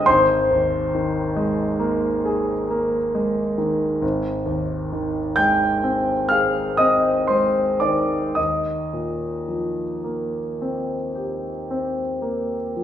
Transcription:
0.06 3.99 G#1 medium
0.06 3.54 C5 medium
0.06 3.58 C6 medium
0.51 1.19 D#2 soft
0.95 1.63 D#3 soft
1.36 2.07 G#3 soft
1.79 2.52 A#3 soft
2.25 2.97 G#4 soft
2.70 3.41 A#3 soft
3.15 3.85 G#3 soft
3.58 4.03 D#3 soft
4.02 8.32 G#1 medium
4.46 5.18 D#2 soft
4.93 5.65 D#3 soft
5.36 6.12 G#3 soft
5.36 6.27 G5 medium
5.36 6.31 G6 medium
5.83 6.61 C4 soft
6.29 7.11 G#4 soft
6.29 6.77 F5 medium
6.29 6.79 F6 medium
6.77 7.61 C4 soft
6.77 7.26 D#5 medium
6.77 7.29 D#6 medium
7.28 8.15 G#3 soft
7.28 7.78 C5 soft
7.28 7.81 C6 medium
7.80 8.36 D#3 soft
7.80 8.32 D5 soft
7.80 8.35 D6 medium
8.35 12.84 D#2 soft
8.35 12.72 D#5 soft
8.35 12.76 D#6 medium
8.93 9.83 A#2 soft
9.48 10.39 F3 soft
10.04 10.94 A#3 soft
10.61 11.49 C4 soft
11.15 12.01 G4 soft
11.71 12.55 C4 soft
12.22 12.84 A#3 soft
12.77 12.84 F3 soft

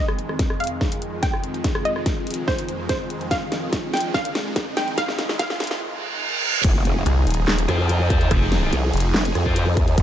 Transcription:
0.00 6.60 F2 medium
0.00 6.60 D#3 medium
0.00 6.60 G#3 medium
0.00 5.81 C4 medium
0.00 5.81 G#4 medium
0.00 1.11 A#4 medium
0.00 0.52 D#5 loud
0.00 5.81 D#5 medium
0.00 riser medium
0.06 5.81 F4 medium
0.06 cross-stick medium
0.19 closed hi-hat soft
0.29 cross-stick soft
0.39 kick loud
0.39 snare soft
0.39 closed hi-hat medium
0.50 cross-stick medium
0.60 1.15 F5 medium
0.60 closed hi-hat soft
0.64 closed hi-hat medium
0.67 closed hi-hat medium
0.81 kick medium
0.81 snare medium
0.92 closed hi-hat medium
1.02 closed hi-hat soft
1.23 1.77 G5 medium
1.23 kick medium
1.23 snare medium
1.23 closed hi-hat medium
1.33 cross-stick soft
1.44 closed hi-hat soft
1.54 closed hi-hat soft
1.64 kick medium
1.64 snare medium
1.64 closed hi-hat medium
1.75 cross-stick medium
1.85 2.40 D#5 medium
1.85 closed hi-hat soft
1.96 cross-stick soft
2.06 kick loud
2.06 snare medium
2.06 closed hi-hat medium
2.27 closed hi-hat soft
2.31 closed hi-hat medium
2.34 closed hi-hat medium
2.48 2.76 C5 medium
2.48 kick loud
2.48 snare medium
2.58 closed hi-hat medium
2.69 closed hi-hat medium
2.89 3.18 C5 medium
2.89 kick medium
2.89 snare medium
2.89 closed hi-hat medium
3.10 closed hi-hat medium
3.21 closed hi-hat soft
3.31 3.86 F5 medium
3.31 kick medium
3.31 snare medium
3.31 closed hi-hat medium
3.52 snare medium
3.52 closed hi-hat soft
3.73 kick loud
3.73 snare medium
3.73 closed hi-hat medium
3.94 4.13 G5 medium
3.94 snare medium
3.94 closed hi-hat soft
3.97 closed hi-hat medium
4.00 closed hi-hat medium
4.14 4.69 F5 medium
4.14 kick loud
4.14 snare medium
4.25 closed hi-hat medium
4.35 snare medium
4.35 closed hi-hat medium
4.56 kick loud
4.56 snare medium
4.56 closed hi-hat medium
4.77 4.96 G5 medium
4.77 snare medium
4.77 closed hi-hat soft
4.88 closed hi-hat soft
4.98 5.38 F5 loud
4.98 kick medium
4.98 snare medium
4.98 closed hi-hat medium
5.08 snare medium
5.19 snare medium
5.19 closed hi-hat soft
5.29 snare medium
5.39 5.79 F5 loud
5.39 kick loud
5.39 snare loud
5.39 closed hi-hat medium
5.50 snare medium
5.60 snare loud
5.60 closed hi-hat soft
5.64 closed hi-hat medium
5.67 snare medium
5.67 closed hi-hat medium
5.81 reverse cymbal medium
6.64 7.04 F1 loud
6.64 10.03 F3 medium
6.64 10.03 D#4 medium
6.64 10.03 G#4 medium
6.64 kick loud
6.64 closed hi-hat medium
6.64 crash loud
6.64 impact medium
6.85 closed hi-hat medium
7.06 7.25 C2 loud
7.06 closed hi-hat medium
7.27 7.67 D#1 loud
7.27 closed hi-hat soft
7.30 closed hi-hat medium
7.34 closed hi-hat medium
7.48 snare loud
7.48 clap medium
7.59 closed hi-hat medium
7.68 8.12 F2 loud
7.68 8.60 F3 medium
7.68 8.60 C4 medium
7.68 8.60 F4 medium
7.68 cross-stick medium
7.68 closed hi-hat medium
7.89 closed hi-hat medium
8.10 8.29 E2 loud
8.10 kick loud
8.10 closed hi-hat medium
8.21 closed hi-hat soft
8.31 8.71 F1 loud
8.31 kick loud
8.31 cross-stick medium
8.31 closed hi-hat medium
8.52 snare medium
8.52 closed hi-hat medium
8.63 8.74 F3 medium
8.63 8.74 C4 medium
8.63 8.74 F4 medium
8.73 8.92 C2 loud
8.73 closed hi-hat medium
8.94 9.13 F1 loud
8.94 closed hi-hat soft
8.97 closed hi-hat medium
9.00 closed hi-hat medium
9.14 9.34 F1 medium
9.14 snare loud
9.14 clap medium
9.25 closed hi-hat medium
9.35 9.78 F2 loud
9.35 cross-stick soft
9.35 closed hi-hat medium
9.46 9.64 F3 medium
9.46 9.64 C4 medium
9.46 9.64 F4 medium
9.46 kick medium
9.56 closed hi-hat medium
9.77 9.96 E2 loud
9.77 kick loud
9.77 closed hi-hat medium
9.88 closed hi-hat soft
9.98 10.03 F1 loud
9.98 kick loud
9.98 closed hi-hat medium

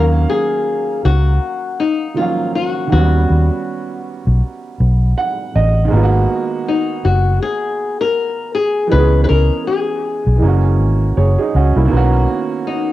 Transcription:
0.00 0.25 D#2 medium
0.00 2.10 D#3 medium
0.00 2.11 F#3 medium
0.00 2.13 A#3 medium
0.00 2.14 C#4 medium
0.00 2.15 F5 medium
0.30 1.00 G#4 medium
1.05 1.38 C#2 medium
1.05 1.82 F#4 loud
1.80 2.18 D#4 medium
2.14 2.85 D#3 soft
2.14 2.24 F3 soft
2.14 2.92 A#3 soft
2.14 2.55 F4 medium
2.19 2.88 F#3 soft
2.19 2.93 C#4 soft
2.19 2.93 F5 medium
2.55 2.91 F#4 medium
2.87 5.83 D#3 medium
2.87 2.98 F#3 soft
2.92 3.25 D#2 medium
2.92 5.88 B3 medium
2.92 5.90 C#4 medium
2.92 4.00 F#4 medium
2.96 5.90 G3 medium
2.96 5.91 F#4 medium
3.30 3.49 D#2 medium
4.27 4.40 B1 medium
4.80 5.13 B1 medium
5.18 5.52 F#5 medium
5.56 5.88 A1 medium
5.56 5.90 D#5 medium
5.85 8.84 D#3 medium
5.85 8.86 G#3 medium
5.91 6.25 G#1 loud
5.91 8.87 A#3 medium
5.91 8.88 B3 medium
5.96 6.01 F4 medium
6.03 8.93 F#4 medium
6.68 7.06 D#4 medium
7.05 7.38 F#1 medium
7.05 7.42 F#4 medium
7.42 8.00 G#4 medium
8.01 8.54 A#4 loud
8.55 8.91 G#4 medium
8.87 10.35 E3 medium
8.87 10.38 G#3 medium
8.92 9.25 C#2 medium
8.92 10.39 B3 medium
8.92 9.23 B4 loud
8.96 10.41 C#4 medium
8.96 10.42 G#4 medium
9.24 9.28 B4 medium
9.29 9.49 C#2 medium
9.29 9.67 A#4 medium
9.67 10.38 G#4 medium
10.27 10.40 B1 medium
10.36 11.86 E3 medium
10.36 11.87 G#3 medium
10.42 10.80 F#1 loud
10.42 10.78 A#3 medium
10.42 10.80 C#4 medium
10.48 10.81 F#4 medium
10.80 11.12 G#1 medium
11.17 11.36 F#1 medium
11.17 11.37 G#4 soft
11.17 11.37 C#5 medium
11.39 11.54 D#4 medium
11.39 11.53 G#4 medium
11.55 11.73 C#2 medium
11.55 11.76 C#4 medium
11.55 11.75 F#4 medium
11.76 11.90 C2 medium
11.76 11.86 A#3 soft
11.76 12.11 E4 medium
11.85 12.93 D#3 medium
11.85 12.93 A#3 medium
11.91 12.25 B1 medium
11.91 12.93 B3 medium
11.91 12.93 C#4 medium
11.96 12.93 F#4 medium
12.67 12.93 D#4 medium

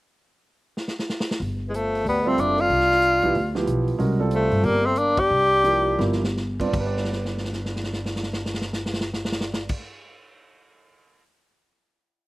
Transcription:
0.77 snare medium
0.88 snare medium
0.99 snare medium
1.09 snare medium
1.20 snare medium
1.31 snare medium
1.40 2.02 G1 medium
1.40 open hi-hat soft
1.67 1.74 E3 soft
1.67 1.77 G#3 medium
1.72 2.05 F3 medium
1.72 2.06 A3 medium
1.72 closed hi-hat soft
1.95 open hi-hat soft
2.05 2.35 D2 medium
2.05 2.26 G3 medium
2.05 2.30 B3 medium
2.05 open hi-hat soft
2.25 2.67 G3 medium
2.25 2.38 A3 medium
2.25 2.68 C4 medium
2.25 2.42 C4 medium
2.25 2.68 F4 medium
2.25 2.68 A4 medium
2.37 2.67 F#1 medium
2.37 2.61 A3 medium
2.37 2.62 D4 medium
2.37 closed hi-hat soft
2.58 3.55 D4 medium
2.58 3.56 F4 loud
2.58 open hi-hat soft
2.69 3.31 C2 medium
2.69 open hi-hat soft
2.80 snare soft
2.91 snare soft
3.02 closed hi-hat medium
3.23 3.33 F3 medium
3.23 3.34 B3 medium
3.23 3.34 E4 medium
3.23 3.34 G4 medium
3.23 kick medium
3.35 3.65 D2 medium
3.35 open hi-hat soft
3.55 3.97 F3 medium
3.55 3.97 B3 medium
3.55 3.97 E4 medium
3.55 3.97 G4 medium
3.55 snare medium
3.66 3.96 B1 medium
3.66 closed hi-hat medium
3.88 open hi-hat soft
3.98 4.48 C2 medium
3.98 4.17 G#3 medium
3.98 4.17 C#4 medium
3.98 4.17 F#4 medium
3.98 4.17 A#4 medium
3.98 open hi-hat soft
4.20 4.89 G3 medium
4.20 4.89 C4 soft
4.20 4.90 F4 medium
4.20 4.90 A4 medium
4.31 4.67 F3 medium
4.31 closed hi-hat medium
4.35 4.67 A3 medium
4.51 4.63 G2 medium
4.51 open hi-hat soft
4.63 5.27 G1 medium
4.63 4.88 G3 medium
4.63 4.87 A#3 medium
4.63 open hi-hat soft
4.86 4.99 A3 medium
4.86 5.00 C4 medium
4.96 5.21 A#3 medium
4.96 5.21 D4 medium
4.96 closed hi-hat medium
5.17 6.23 D4 medium
5.17 6.23 G4 loud
5.17 kick medium
5.17 ride medium
5.30 5.96 C2 medium
5.64 5.98 F3 medium
5.64 5.98 A#3 medium
5.64 5.98 E4 soft
5.64 5.98 G4 medium
5.64 closed hi-hat medium
5.99 6.69 G1 medium
5.99 6.20 F3 medium
5.99 6.20 A#3 medium
5.99 6.20 E4 medium
5.99 6.20 G4 medium
5.99 snare soft
6.12 snare soft
6.24 snare medium
6.37 snare soft
6.60 9.70 G2 medium
6.60 6.72 C4 medium
6.60 6.72 F4 soft
6.60 6.72 B4 soft
6.60 6.72 D5 medium
6.60 kick medium
6.60 crash medium
6.68 9.73 G3 medium
6.73 9.72 G1 medium
6.73 9.76 D4 medium
6.73 kick loud
6.73 crash medium
6.80 9.79 B4 medium
6.87 9.82 D5 medium
6.97 snare soft
7.04 snare soft
7.13 snare soft
7.25 snare soft
7.38 snare soft
7.45 snare soft
7.53 snare medium
7.65 snare medium
7.76 snare medium
7.84 snare medium
7.93 snare medium
8.05 snare medium
8.16 snare medium
8.23 snare medium
8.33 snare medium
8.46 snare medium
8.54 snare medium
8.61 snare medium
8.73 snare medium
8.86 snare medium
8.93 snare medium
9.01 snare medium
9.14 snare medium
9.25 snare medium
9.32 snare medium
9.41 snare medium
9.54 snare medium
9.69 kick medium
9.69 crash medium

